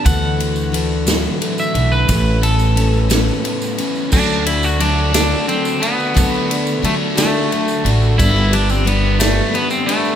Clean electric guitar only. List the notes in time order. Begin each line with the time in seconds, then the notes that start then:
0.05 F#5
1.60 E5
1.92 B4
2.43 A4
4.13 D4
4.46 E4
4.64 F#4
4.81 D4
5.15 D4
5.48 C4
5.82 B3
6.85 A3
7.18 A3
8.18 E4
8.53 D4
8.70 C4
8.87 B3
9.20 A3
9.55 B3
9.71 C4
9.86 A3